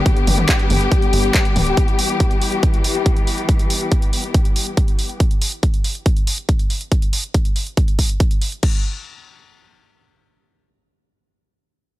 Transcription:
<<
  \new Staff \with { instrumentName = "String section" } { \clef bass \time 4/4 \key e \dorian \tempo 4 = 140 << { <g b g'>1~ | <g b g'>1~ | <g b g'>1 | r1 |
r1 | r1 | r1 | } \\ { d1 | e1~ | e1 | r1 |
r1 | r1 | r1 | } >> }
  \new Staff \with { instrumentName = "Analog synth bass" } { \clef bass \time 4/4 \key e \dorian r8 g,,8 r8 g,,8 r8 g,,8 r8 d,,8 | r1 | r1 | r1 |
r1 | r1 | r1 | }
  \new DrumStaff \with { instrumentName = "Drums" } \drummode { \time 4/4 <hh bd>16 hh16 <hho toml>16 <hh toml>16 <hc hh bd>16 hh16 <hho toml>16 hh16 <hh bd>16 hh16 hho16 hh16 <hc hh bd>16 hh16 <hho toml>16 hh16 | <hh bd>16 hh16 hho16 hh16 <hh bd>16 hh16 hho16 hh16 <hh bd>16 hh16 hho16 hh16 <hh bd>16 hh16 hho16 hh16 | <hh bd>16 hh16 hho16 hh16 <hh bd>16 hh16 hho16 hh16 <hh bd>16 hh16 hho16 hh16 <hh bd>16 hh16 hho16 hh16 | <hh bd>16 hh16 hho16 hh16 <hh bd>16 hh16 hho16 hh16 <hh bd>16 hh16 hho16 hh16 <hh bd>16 hh16 hho16 hh16 |
<hh bd>16 hh16 hho16 hh16 <hh bd>16 hh16 hho16 hh16 <hh bd>16 hh16 <hho bd>16 hh16 <hh bd>16 hh16 hho16 hh16 | <cymc bd>4 r4 r4 r4 | r4 r4 r4 r4 | }
>>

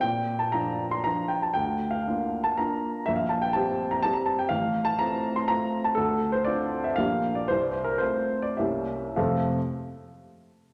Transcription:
\new Staff \with { instrumentName = "Grand piano" } { \time 3/4 \key f \major \tempo 4 = 118 << { g''8. a''16 bes''8. c'''16 bes''8 g''16 a''16 | g''8. f''4 a''16 bes''4 | e''16 f''16 a''16 g''16 a''8. bes''16 a''16 bes''16 a''16 g''16 | f''8. a''16 bes''8. c'''16 bes''8. a''16 |
a'8. c''16 d''8. e''16 f''8. d''16 | c''16 d''16 c''16 bes'16 c''8. d''16 e''4 | <f, c a c' f' a' f''>8 r2 r8 | } \\ { bes,4 <f d' f'>4 <f d' f'>4 | d,4 <bes d' f'>4 <bes d' f'>4 | bes,,4 <g c' g'>4 <g c' g'>4 | a,,4 <a c' f'>4 <a c' f'>4 |
d,4 <c' d' f'>4 <bes,, bes d' g'>4 | c,4 <a c' f'>4 <c, bes des' g'>4 | r2. | } >> }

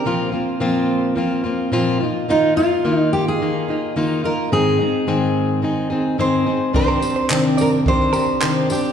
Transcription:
<<
  \new Staff \with { instrumentName = "Clean electric guitar" } { \time 4/4 \key c \minor \tempo 4 = 108 r1 | r1 | r1 | r16 bes'16 r16 c''8 r16 d''16 r8. bes'16 r16 c''8. r16 | }
  \new Staff \with { instrumentName = "Steel-string acoustic guitar" } { \time 4/4 \key c \minor bes'2. r4 | ees'8 f'4 g'16 aes'4~ aes'16 r8 bes'8 | aes'2. c''4 | c''4 r8 bes'8 c''4. g'8 | }
  \new Staff \with { instrumentName = "Steel-string acoustic guitar" } { \time 4/4 \key c \minor <bes, f bes c' f'>8 <bes c' f'>8 <bes, f bes c' f'>4 <f bes c' f'>8 <bes c' f'>8 <bes, f bes c' f'>8 <bes ees' f'>8 | <ees bes ees' f'>8 <bes ees' f'>8 <ees bes ees' f'>4 <ees bes ees' f'>8 <bes ees' f'>8 <ees bes ees' f'>8 <bes ees' f'>8 | <aes, ees aes c' ees' aes'>8 <aes c' ees' aes'>8 <aes, ees aes c' ees' aes'>4 <aes c' ees' aes'>8 <aes c' ees' aes'>8 <aes, ees aes c' ees' aes'>8 <aes c' ees' aes'>8 | <c ees c' d' g'>8 <c' d' g'>8 <c ees c' d' g'>4 <ees c' d' g'>8 <c' d' g'>8 <c ees c' d' g'>8 <c' d' g'>8 | }
  \new DrumStaff \with { instrumentName = "Drums" } \drummode { \time 4/4 r4 r4 r4 r4 | r4 r4 r4 r4 | r4 r4 r4 r4 | bd8 tamb8 hc8 tamb8 bd8 tamb8 hc8 tamb8 | }
>>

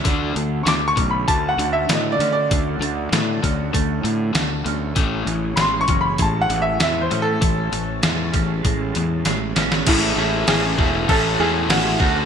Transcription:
<<
  \new Staff \with { instrumentName = "Upright piano" } { \time 4/4 \key a \major \tempo 4 = 98 r4 \tuplet 3/2 { <cis''' d'''>8 cis'''8 b''8 a''8 fis''8 e''8 dis''8 d''8 d''8~ } | d''2~ d''8 r4. | r4 \tuplet 3/2 { <b'' c'''>8 cis'''8 b''8 a''8 fis''8 e''8 e''8 c''8 a'8~ } | a'2~ a'8 r4. |
e'4 gis'4 a'8 gis'8 fis'8. r16 | }
  \new Staff \with { instrumentName = "Analog synth pad" } { \time 4/4 \key a \major << { <d a a'>1~ | <d a a'>1 | <e cis' cis''>1~ | <e cis' cis''>1 |
r1 | } \\ { fis'1~ | fis'1 | gis'1 | a''1 |
r1 | } >> }
  \new Staff \with { instrumentName = "Overdriven electric guitar" } { \time 4/4 \key a \major <d a d'>8 <d a>8 <d a>8 <d a>8 <d a>8 <d a>8 <d a>8 <d a>8 | <d a>8 <d a>8 <d a>8 <d a>8 <d a>8 <d a>8 <d a>8 <d a>8 | <a, e a>8 <a, e>8 <a, e>8 <a, e>8 <a, e>8 <a, e>8 <a, e>8 <a, e>8 | <a, e>8 <a, e>8 <a, e>8 <a, e>8 <a, e>8 <a, e>8 <a, e>8 <a, e>8 |
<a cis' e' a'>8 <a cis' e' a'>8 <a cis' e' a'>8 <a cis' e' a'>8 <a cis' e' a'>8 <a cis' e' a'>8 <a cis' e' a'>8 <d a d' fis' a'>8 | }
  \new Staff \with { instrumentName = "Clean electric guitar" } { \clef bass \time 4/4 \key a \major d8 d8 a8 cis'8 a8 d8 a8 cis'8 | d8 d8 a8 cis'8 a8 d8 a8 cis'8 | a,8 e8 gis8 cis'8 gis8 e8 gis8 cis'8 | a,8 e8 gis8 cis'8 gis8 e8 gis8 cis'8 |
<a, e gis cis' e'>8 <a, e gis cis' e'>8 <a, e gis cis' e'>8 <a, e gis cis' e'>8 <a, e gis cis' e'>8 <a, e gis cis' e'>8 <a, e gis cis' e'>8 <d a cis' fis'>8 | }
  \new Staff \with { instrumentName = "Fingered electric bass" } { \clef bass \time 4/4 \key a \major d,8 d,8 d,8 b,,8 d,8 d,8 a,8 d8 | d,8 d,8 a,8 d,8 d,8 a,8 d,8 d,8 | a,,8 a,,8 a,,8 fis,,8 a,,8 a,,8 e,8 a,8 | a,,8 a,,8 e,8 a,,8 a,,8 e,8 a,,8 a,,8 |
a,,8 a,,8 a,,8 e,,8 a,,8 e,8 a,,8 d,8 | }
  \new DrumStaff \with { instrumentName = "Drums" } \drummode { \time 4/4 <hho bd>8 hho8 <hho sn>8 <hho bd>8 <hho bd>8 hho8 <hho sn>8 <hho sn>8 | <hho bd>8 hho8 <hho sn>8 <hho bd>8 <hho bd>8 hho8 <hho sn>8 hho8 | <hho bd>8 hho8 <hho sn>8 <hho bd>8 <hho bd>8 hho8 <hho sn>8 <hho sn>8 | <hho bd>8 hho8 <hho sn>8 <hho bd>8 <hho bd>8 hho8 <hho sn>8 <hho sn>16 sn16 |
<cymc bd>4 <cymc sn>8 bd8 <cymc bd>4 <cymc sn>8 bd8 | }
>>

